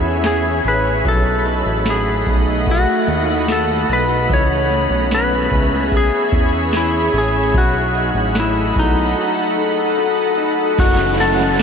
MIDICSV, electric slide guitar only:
0, 0, Header, 1, 2, 480
1, 0, Start_track
1, 0, Tempo, 810811
1, 624, Time_signature, 4, 2, 24, 8
1, 6883, End_track
2, 0, Start_track
2, 0, Title_t, "Electric slide guitar"
2, 0, Program_c, 0, 29
2, 0, Note_on_c, 0, 64, 80
2, 134, Note_off_c, 0, 64, 0
2, 157, Note_on_c, 0, 68, 78
2, 398, Note_off_c, 0, 68, 0
2, 403, Note_on_c, 0, 71, 83
2, 617, Note_off_c, 0, 71, 0
2, 642, Note_on_c, 0, 69, 86
2, 1124, Note_off_c, 0, 69, 0
2, 1127, Note_on_c, 0, 68, 77
2, 1604, Note_off_c, 0, 68, 0
2, 1606, Note_on_c, 0, 66, 77
2, 1956, Note_off_c, 0, 66, 0
2, 1956, Note_on_c, 0, 64, 77
2, 2084, Note_on_c, 0, 69, 82
2, 2089, Note_off_c, 0, 64, 0
2, 2321, Note_off_c, 0, 69, 0
2, 2327, Note_on_c, 0, 71, 92
2, 2562, Note_off_c, 0, 71, 0
2, 2566, Note_on_c, 0, 73, 92
2, 3044, Note_off_c, 0, 73, 0
2, 3046, Note_on_c, 0, 71, 91
2, 3529, Note_off_c, 0, 71, 0
2, 3533, Note_on_c, 0, 68, 85
2, 3975, Note_off_c, 0, 68, 0
2, 4007, Note_on_c, 0, 64, 79
2, 4242, Note_off_c, 0, 64, 0
2, 4251, Note_on_c, 0, 68, 88
2, 4483, Note_off_c, 0, 68, 0
2, 4486, Note_on_c, 0, 66, 76
2, 4969, Note_off_c, 0, 66, 0
2, 4970, Note_on_c, 0, 64, 69
2, 5203, Note_off_c, 0, 64, 0
2, 5206, Note_on_c, 0, 63, 65
2, 6131, Note_off_c, 0, 63, 0
2, 6392, Note_on_c, 0, 66, 77
2, 6611, Note_off_c, 0, 66, 0
2, 6632, Note_on_c, 0, 69, 84
2, 6883, Note_off_c, 0, 69, 0
2, 6883, End_track
0, 0, End_of_file